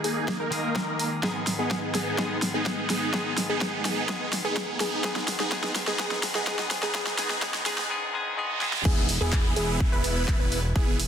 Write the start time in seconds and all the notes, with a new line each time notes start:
Already playing: D#3 G#3 A#3 G#4, riser
0.04 A#3 D#4 G#4, open hi-hat
0.28 kick, snare
0.40 A#3 D#4 A#4
0.51 D#3 G#3 A#3 G#4, open hi-hat
0.76 kick, snare
0.87 A#3 D#4 A#4
0.99 open hi-hat
1.22 G#2 D#3 G#3 B3 D#4 G#4, kick, snare
1.47 snare, open hi-hat
1.59 B3 D#4 G#4
1.71 kick, snare
1.95 B3 D#4 G#4, snare, open hi-hat
2.17 G#2 D#3 G#3 B3 D#4 G#4, kick, snare
2.42 snare, open hi-hat
2.54 B3 D#4 G#4
2.66 kick, snare
2.90 B3 D#4 G#4, snare, open hi-hat
3.13 G#2 D#3 G#3 B3 D#4 G#4, kick, snare
3.38 snare, open hi-hat
3.49 B3 D#4 G#4
3.61 kick, snare
3.85 B3 D#4 G#4, snare, open hi-hat
4.08 G#2 D#3 G#3 B3 D#4 G#4, kick, snare
4.33 snare, open hi-hat
4.45 B3 D#4 G#4
4.56 kick, snare
4.80 B3 D#4 G#4, snare, open hi-hat
5.03 G#2 D#3 G#3 B3 D#4 G#4, kick, snare
5.16 snare
5.28 snare, open hi-hat
5.40 B3 D#4 G#4, snare
5.51 G#2 D#3 G#3 B3 D#4 G#4, kick, snare
5.64 snare
5.76 snare, open hi-hat
5.87 B3 D#4 G#4, snare
5.98 G#2 D#3 G#3 B3 D#4 G#4, kick, snare
6.11 snare
6.23 snare, open hi-hat
6.35 B3 D#4 G#4, snare
6.46 G#2 D#3 G#3 B3 D#4 G#4, kick, snare
6.59 snare
6.71 snare, open hi-hat
6.83 B3 D#4 G#4, snare
6.93 G#2 D#3 G#3 B3 D#4 G#4, kick, snare
7.07 snare
7.17 G#2 D#3 G#3 B3 D#4 G#4, snare, open hi-hat
7.30 snare
7.41 G#2 D#3 G#3 B3 D#4 G#4, kick, snare
7.54 snare
7.65 G#2 D#3 G#3 B3 D#4 G#4, snare, open hi-hat
7.78 snare
7.89 G#2 D#3 G#3 B3 G#4, reverse cymbal
8.13 G#2 D#3 G#3 B3 G#4
8.36 G#2 D#3 G#3 B3 G#4
8.60 G#2 D#3 G#3 B3 G#4, snare
8.73 snare
8.85 E1 B3 E4 G#4, kick, crash, downlifter
9.09 open hi-hat
9.21 E1 B3 E4 G#4
9.32 kick, clap
9.56 E1 B3 E4 G#4, open hi-hat
9.80 kick
9.92 E1 B3 E4 B4
10.04 open hi-hat
10.28 kick, clap
10.40 E1 B3 E4 B4
10.52 open hi-hat
10.76 E1 B3 E4 G#4, kick
10.99 open hi-hat